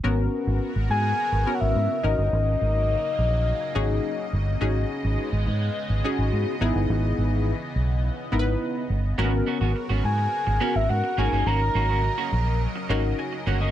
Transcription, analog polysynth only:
\new Staff \with { instrumentName = "Analog polysynth" } { \time 4/4 \key gis \minor \tempo 4 = 105 << { r1 | r1 | r1 | r1 |
r1 | r2. <dis'' gis''>8 <cis'' fis''>16 <ais' dis''>16 | } \\ { <b cis' fis' ais'>4 r4. <b cis' fis' ais'>4 <cis' dis' fis' ais'>8~ | <cis' dis' fis' ais'>4 r4. <cis' dis' fis' gis'>4 r8 | <cis' dis' fis' gis'>4 r4. <cis' dis' fis' gis'>4 <b dis' e' gis'>8~ | <b dis' e' gis'>4 r4. <b dis' e' ais' b'>4 r8 |
<ais b cis' fis' ais'>4 r4. <b cis' fis' ais'>4 <cis' dis' fis' ais'>8~ | <cis' dis' fis' ais'>4 r4. <cis' dis' fis' ais'>4 r8 | } >> }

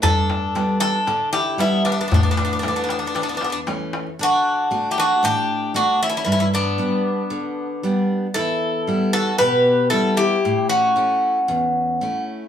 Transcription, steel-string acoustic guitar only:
\new Staff \with { instrumentName = "Steel-string acoustic guitar" } { \time 4/4 \key d \major \tempo 4 = 115 g,4 <g b d'>4 d4 <g b d'>4 | a,4 <e a cis'>4 e,4 <e a cis'>4 | d4 <a d' fis'>4 a,4 <a d' fis'>4 | g,4 <g b d'>4 d4 <g b d'>4 |
e,4 <g b e'>4 b,4 <g b e'>4 | a,4 <a cis' e'>4 e,4 <a cis' e'>4 | }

